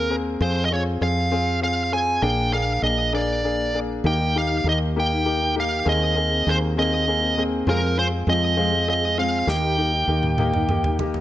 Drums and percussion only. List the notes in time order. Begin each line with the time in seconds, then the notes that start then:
9.48 snare
10.23 mid tom
10.38 mid tom
10.54 mid tom
10.69 mid tom
10.84 floor tom
10.99 floor tom
11.14 floor tom